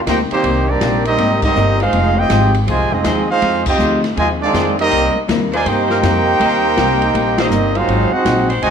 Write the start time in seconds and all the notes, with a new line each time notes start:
0.07 D2 C3 A#3 D#4 G4 A#4 C5 G5, kick, snare, hi-hat pedal, ride
0.31 D#3 G3 A#3 C4 D#4 G4 C5, muted upright bass stroke, ride
0.44 C2 C3 A#3 D#4 G4, kick, ride
0.69 G3 A#3 C4 D4 G4 A#4 D5
0.81 A#1 C3 A#3 D#4 G4, kick, snare, hi-hat pedal, ride
1.05 G3 A#3 C4 D#4 G4 A#4 D#5, ride
1.18 G#1 C3 A#3 D#4 G4, kick, ride
1.42 G3 A#3 C4 D#4 G4 A#4 D#5, kick, crash
1.56 G1 C3 A#3 D#4 G4, hi-hat pedal
1.80 G#3 C4 D#4 F4 G#4 C5 F5, ride
1.93 F1 F3 C4 D#4 G#4, kick, ride
2.18 C4 D#4 F4 G4 C5 D#5 G5
2.30 G#1 F3 C4 D#4 G#4, kick, snare, hi-hat pedal, ride
2.54 ride
2.67 C2 C3 D#3 F3 G#3 C4 D#4 F4 G#4 C5 D#5 G#5, kick, ride
2.80 G#1
2.92 F1 G#3 C4 D#4 F4 G#4 D#5
3.04 D#2 F3 G#3 C4 D#4 F4 G#4 C5, kick, snare, hi-hat pedal, ride
3.30 G#3 C4 D#4 F4 G#4 C5 F5
3.42 F2 F3 C4 D#4 G#4, kick, ride
3.66 C4 D#4 F4 G4 C5 D#5 G5, kick, crash
3.78 D2 F3 C4 D#4 G#4, hi-hat pedal
4.04 snare, ride
4.15 D#2 C3 D#3 F3 G#3 C4 D#4 F4 G#4 C5 D#5 G#5, kick, ride
4.42 D#3 G#3 C4 D4 F4 G#4 D5
4.53 F2 F3 G#3 C4 D#4 F4 G#4 C5, kick, snare, hi-hat pedal, ride
4.78 G3 A#3 C4 D#4 G4 A#4 D#5, ride
4.90 C2 C3 G3 A#3 D#4, kick, ride
5.15 muted upright bass stroke
5.28 D#2 C3 G3 A#3 D#4, kick, snare, hi-hat pedal, ride
5.52 G#3 A#3 D#4 F4 G4 A#4 C5 D5 G#5, ride
5.64 G2 C3 G3 A#3 D#4 G4 A#4 C5 G5, kick, ride
5.90 A#3 D#4 G4 A#4, snare
6.03 F2 C3 G3 A#3 D#4, kick, snare, hi-hat pedal, ride
6.40 D#2 C3 G3 A#3 D#4 G4 C5, kick, ride
6.77 C2 C3 G3 A#3 D#4, kick, snare, hi-hat pedal, ride
7.02 ride
7.13 A#1 C3 G3 A#3 D#4, kick, ride
7.38 G3 A#3 C4 D#4 G4 A#4 C5 D#5, snare, ride
7.50 G1 C3 G3 A#3 D#4, hi-hat pedal
7.75 F#3 C4 D#4 F4 G#4 C5 F5, ride
7.87 G#1 G#2 F#3 C4 D#4, kick, ride
8.11 C4 D#4 F#4 G#4 C5 F#5, muted upright bass stroke
8.25 A#1 G#2 F#3 C4 D#4, kick, snare, hi-hat pedal, ride
8.49 G#3 D#4 F#4 C5, ride
8.62 C2 G#2 C3 D#3 F#3 G#3 C4 D#4 F#4 C5 D#5 G#5, kick, ride